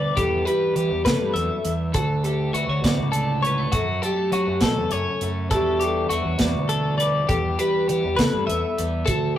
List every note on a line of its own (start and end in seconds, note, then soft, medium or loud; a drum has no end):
0.00 0.14 E2 medium
0.00 0.14 B2 soft
0.00 0.17 D3 medium
0.00 0.17 G3 soft
0.00 0.14 D4 soft
0.00 0.19 B4 medium
0.00 0.17 D5 medium
0.17 1.03 E2 medium
0.17 0.44 E2 medium
0.17 1.92 E3 medium
0.17 0.46 G3 soft
0.17 0.75 B3 medium
0.17 0.45 G4 medium
0.17 0.47 A4 medium
0.17 kick medium
0.17 closed hi-hat medium
0.45 1.95 G3 medium
0.45 1.02 G4 medium
0.45 0.76 B4 medium
0.45 closed hi-hat soft
0.76 0.89 E3 medium
0.76 1.95 B3 medium
0.76 1.05 G4 medium
0.76 closed hi-hat medium
0.91 1.04 E2 medium
1.04 1.33 G2 medium
1.04 1.19 C#3 medium
1.04 1.35 B4 medium
1.04 kick medium
1.04 snare medium
1.04 closed hi-hat medium
1.08 1.70 A4 medium
1.20 1.34 G2 medium
1.33 1.48 E2 medium
1.33 1.64 F#2 medium
1.33 1.94 E5 medium
1.33 closed hi-hat medium
1.64 1.94 E2 medium
1.64 closed hi-hat medium
1.94 2.47 D2 medium
1.94 3.73 D2 medium
1.94 2.05 F#4 medium
1.94 2.24 A4 medium
1.94 kick medium
1.94 closed hi-hat medium
2.24 3.43 A3 medium
2.24 2.54 G4 medium
2.24 2.52 A4 medium
2.24 closed hi-hat medium
2.53 2.67 D2 medium
2.53 2.69 B3 medium
2.53 3.11 F#4 medium
2.53 2.69 E5 medium
2.53 closed hi-hat medium
2.68 2.82 D2 medium
2.68 3.14 D4 soft
2.68 2.84 C#5 medium
2.83 2.97 D2 medium
2.83 3.73 A2 medium
2.83 3.45 D5 medium
2.83 kick medium
2.83 snare medium
2.83 closed hi-hat medium
2.98 3.64 C#2 medium
3.12 3.43 A4 medium
3.12 closed hi-hat medium
3.16 3.71 D4 soft
3.42 3.58 G3 soft
3.42 3.73 C#5 medium
3.42 closed hi-hat medium
3.47 3.74 B4 medium
3.58 3.73 A3 soft
3.72 4.00 F#2 medium
3.72 5.48 F#2 medium
3.72 4.02 F#4 medium
3.72 3.82 A4 medium
3.72 kick loud
3.72 closed hi-hat medium
4.02 4.16 G3 soft
4.02 4.65 G4 medium
4.02 4.32 A4 medium
4.02 closed hi-hat medium
4.16 5.21 A3 soft
4.32 4.45 F#3 medium
4.32 4.91 C#4 medium
4.32 4.62 F#4 medium
4.32 closed hi-hat soft
4.47 4.60 F#2 medium
4.60 4.75 B2 medium
4.60 5.47 C#3 medium
4.60 4.92 A4 medium
4.60 kick medium
4.60 snare loud
4.60 closed hi-hat medium
4.65 5.27 A4 medium
4.77 4.90 E2 medium
4.91 5.05 F#2 medium
4.91 5.48 C#4 soft
4.91 5.51 C#5 medium
4.91 closed hi-hat soft
5.21 5.51 F#2 medium
5.21 5.53 A3 soft
5.21 closed hi-hat medium
5.51 6.04 E2 medium
5.51 7.26 E2 medium
5.51 7.27 E3 soft
5.51 5.81 G3 medium
5.51 5.84 G4 medium
5.51 5.81 A4 medium
5.51 kick medium
5.51 closed hi-hat medium
5.56 6.09 D4 medium
5.56 7.30 F#4 medium
5.79 6.97 G3 medium
5.79 6.09 G4 medium
5.79 closed hi-hat medium
5.84 6.13 A4 medium
6.09 6.24 E2 medium
6.09 6.68 D4 medium
6.09 6.70 F#4 medium
6.09 6.28 E5 medium
6.09 closed hi-hat medium
6.25 6.39 E2 medium
6.25 6.41 C#5 medium
6.38 6.53 E2 medium
6.38 7.25 B2 medium
6.38 7.00 D5 medium
6.38 kick medium
6.38 snare loud
6.38 closed hi-hat medium
6.55 7.21 D2 medium
6.69 7.26 D4 medium
6.69 6.97 A4 medium
6.69 closed hi-hat medium
6.98 7.57 G3 medium
6.98 7.08 B4 medium
6.98 7.29 D5 medium
6.98 closed hi-hat medium
7.27 8.14 E2 medium
7.27 7.56 E2 medium
7.27 7.59 G4 medium
7.27 7.37 A4 medium
7.27 kick loud
7.27 closed hi-hat medium
7.58 8.77 G3 medium
7.58 8.15 G4 medium
7.58 7.88 B4 medium
7.58 closed hi-hat medium
7.88 8.03 E3 medium
7.88 8.46 B3 medium
7.88 8.18 G4 medium
7.88 closed hi-hat medium
8.04 8.18 E2 medium
8.16 9.03 E2 medium
8.16 8.32 C#3 medium
8.16 8.46 B4 medium
8.16 kick medium
8.16 snare loud
8.16 closed hi-hat medium
8.20 8.82 A4 medium
8.34 8.47 G2 medium
8.47 8.62 E2 medium
8.47 9.07 B3 medium
8.47 9.07 E5 medium
8.47 closed hi-hat medium
8.78 9.08 E2 medium
8.78 9.08 G3 medium
8.78 closed hi-hat medium
9.06 9.38 D2 medium
9.06 9.37 F#4 medium
9.06 9.36 A4 medium
9.06 kick loud
9.06 closed hi-hat medium